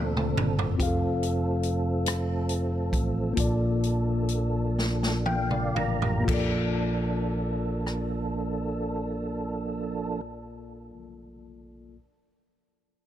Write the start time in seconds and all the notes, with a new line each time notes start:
Already playing: D2 A#2 D3 A#3 C4 D4 F4 A4 D5
0.17 mid tom
0.37 G1, mid tom
0.59 floor tom
0.76 F1 F3 A3 C4 F4 G4, kick, closed hi-hat
0.80 G#4 F5
0.86 A4
1.23 closed hi-hat
1.63 closed hi-hat
2.06 cross-stick, closed hi-hat
2.49 closed hi-hat
2.93 A1, kick, closed hi-hat
3.33 A#1 A#2 F3 A#3 F4, kick, closed hi-hat
3.38 D4 A4 D5
3.83 closed hi-hat
4.28 closed hi-hat
4.79 snare
5.03 snare
5.26 F5 G5, high tom
5.51 D5 F5, mid tom
5.75 A1 A#4 D5 F5 A#5, mid tom
6.01 G4 A#4, floor tom
6.21 A#3
6.25 A#1 F4, kick, crash
6.29 F3 A#3 D4 A4
6.34 D5
7.87 cross-stick